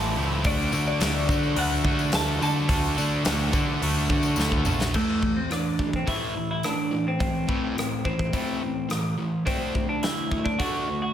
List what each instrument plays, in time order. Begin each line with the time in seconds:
Already playing: picked electric bass A1, distorted electric guitar A2 E3 A3 C4 E4, clean electric guitar A5
0.02 tambourine
0.17 picked electric bass C#2, distorted electric guitar A2 E3 A3 C4 E4
0.44 picked electric bass D2, distorted electric guitar D3 A3 D4 F#4, clean electric guitar D5, kick, open hi-hat, tambourine
0.72 distorted electric guitar D3 A3 D4 F#4, picked electric bass D3, tambourine
0.87 clean electric guitar D5, tambourine
1.00 picked electric bass D2, distorted electric guitar D3 A3 D4 F#4, snare, open hi-hat, tambourine
1.28 distorted electric guitar D3 A3 D4 F#4, picked electric bass D3, kick, tambourine
1.43 tambourine
1.55 picked electric bass D2, distorted electric guitar D3 A3 D4 F#4, clean electric guitar F#5, open hi-hat
1.84 distorted electric guitar D3 A3 D4 F#4, picked electric bass D3, kick
1.99 tambourine
2.12 picked electric bass D2, distorted electric guitar D3 A3 D4 F#4, clean electric guitar A5, snare, open hi-hat, tambourine
2.28 tambourine
2.40 distorted electric guitar D3 A3 D4 F#4, picked electric bass D3, clean electric guitar A5, tambourine
2.68 picked electric bass D2, distorted electric guitar D3 A3 D4 F#4, kick, open hi-hat, tambourine
2.83 tambourine
2.97 distorted electric guitar D3 A3 D4 F#4, picked electric bass D3, tambourine
3.24 picked electric bass D2, distorted electric guitar D3 A3 D4 F#4, snare, open hi-hat, tambourine
3.39 tambourine
3.52 distorted electric guitar D3 A3 D4 F#4, picked electric bass D3, kick, tambourine
3.82 picked electric bass D2, distorted electric guitar D3 A3 D4 F#4, open hi-hat
3.96 tambourine
4.09 picked electric bass D3, distorted electric guitar D3 A3 D4 F#4, kick, tambourine
4.23 tambourine
4.36 picked electric bass D2, distorted electric guitar D3 A3 D4 F#4, snare, tambourine
4.51 kick, tambourine
4.65 picked electric bass A#1, distorted electric guitar D3 A3 D4 F#4, mid tom, tambourine
4.79 snare, tambourine
4.94 distorted electric guitar A2 E3 A3, clean electric guitar A3, kick, crash
5.22 distorted electric guitar A2 E3, kick
5.37 clean electric guitar C4
5.50 distorted electric guitar A2 E3, clean electric guitar D4, cross-stick, open hi-hat
5.79 distorted electric guitar A2 E3, kick
5.93 clean electric guitar C4, kick
6.06 distorted electric guitar A2 E3 A3, clean electric guitar E4, kick, open hi-hat
6.36 distorted electric guitar A2 E3
6.51 clean electric guitar E4
6.63 distorted electric guitar A2 E3, clean electric guitar D4, cross-stick, open hi-hat
6.91 distorted electric guitar A2 E3
7.08 clean electric guitar C4
7.20 distorted electric guitar A2 E3, kick, open hi-hat
7.48 distorted electric guitar A2 E3 A3, kick
7.77 distorted electric guitar A2 E3, cross-stick, open hi-hat
8.05 distorted electric guitar A2 E3, clean electric guitar C4, kick
8.19 kick
8.33 distorted electric guitar A2 E3 A3, kick, open hi-hat
8.62 distorted electric guitar A2 E3
8.89 distorted electric guitar A2 E3, cross-stick, open hi-hat
9.18 distorted electric guitar A2 E3
9.46 distorted electric guitar D3 A3 D4, clean electric guitar C4, kick, open hi-hat
9.75 distorted electric guitar D3 A3, kick
9.89 clean electric guitar D4
10.03 distorted electric guitar D3 A3, clean electric guitar E4, snare, open hi-hat
10.31 distorted electric guitar D3 A3, kick
10.45 clean electric guitar D4, kick
10.59 distorted electric guitar D3 A3 D4, clean electric guitar F#4, kick, open hi-hat
10.88 distorted electric guitar D3 A3
11.02 clean electric guitar F#4